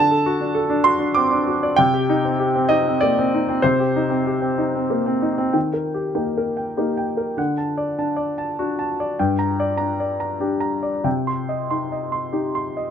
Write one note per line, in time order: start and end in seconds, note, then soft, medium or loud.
0.00 1.73 D3 medium
0.00 0.85 A5 loud
0.11 0.35 A4 medium
0.26 0.50 F#4 medium
0.41 0.65 D4 soft
0.55 0.79 A4 medium
0.70 0.94 D4 medium
0.84 1.10 F#4 medium
0.84 1.15 C6 loud
0.99 1.24 D4 soft
1.15 1.31 C4 soft
1.15 1.46 D6 medium
1.31 1.56 D4 soft
1.47 1.71 F#4 soft
1.63 1.78 D5 medium
1.76 3.60 C3 medium
1.76 2.69 G5 loud
1.94 2.18 G4 medium
2.09 2.33 D#4 medium
2.25 2.49 C4 soft
2.39 2.64 G4 medium
2.55 2.80 C4 soft
2.69 2.95 D#4 medium
2.69 3.00 D#5 medium
2.87 3.11 C4 soft
3.01 3.17 A#3 soft
3.01 3.64 D5 medium
3.19 3.43 C4 soft
3.34 3.59 D#4 soft
3.48 3.74 C4 soft
3.62 5.51 C3 medium
3.62 5.23 C5 medium
3.80 4.05 G4 soft
3.96 4.21 D#4 medium
4.10 4.36 C4 soft
4.27 4.53 G4 soft
4.42 4.68 C4 soft
4.58 4.84 D#4 soft
4.75 5.01 C4 soft
4.90 5.07 A#3 soft
5.06 5.32 C4 soft
5.22 5.48 D#4 soft
5.38 5.54 C4 soft
5.53 6.14 D#3 soft
5.53 5.87 G5 soft
5.74 6.07 A#4 soft
5.94 6.28 G4 soft
6.15 6.73 A#3 soft
6.15 6.73 D#4 soft
6.15 6.49 G5 soft
6.38 6.70 A#4 soft
6.57 6.90 G5 soft
6.77 7.34 A#3 soft
6.77 7.34 D#4 soft
6.77 7.10 G4 soft
6.97 7.30 G5 soft
7.17 7.38 A#4 soft
7.37 7.96 D3 soft
7.37 7.70 F#5 soft
7.58 7.90 A5 soft
7.78 8.10 D5 soft
7.98 8.55 D4 soft
7.98 8.31 A5 soft
8.16 8.50 D5 soft
8.38 8.71 A5 soft
8.59 9.15 D4 soft
8.59 8.91 F#4 soft
8.79 9.11 A5 soft
9.00 9.20 D5 soft
9.19 9.78 G2 soft
9.19 9.51 G5 soft
9.39 9.71 A#5 soft
9.60 9.92 D5 soft
9.77 10.36 D4 soft
9.77 10.11 A#5 soft
10.00 10.33 D5 soft
10.20 10.54 A#5 soft
10.40 11.01 D4 soft
10.40 10.75 G4 soft
10.61 10.96 A#5 soft
10.83 11.05 D5 soft
11.04 11.68 C3 soft
11.04 11.39 G5 soft
11.27 11.62 C6 soft
11.49 11.83 D#5 soft
11.71 12.31 D#4 soft
11.71 12.05 C6 soft
11.92 12.26 D#5 soft
12.12 12.47 C6 soft
12.33 12.90 D#4 soft
12.33 12.68 G4 soft
12.55 12.90 C6 soft
12.77 12.90 D#5 soft